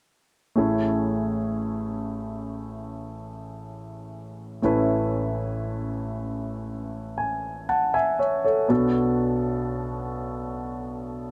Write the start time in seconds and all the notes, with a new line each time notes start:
0.56 A1 A2 A3 C#4 E4 G#4
4.62 A1 A2 A3 C#4 E4 B4
7.18 G#5
7.69 F#5 A5
7.94 E5 G#5
8.19 C#5 E5
8.45 A4 C#5
8.68 B1 B2 B3 D4 F#4 A4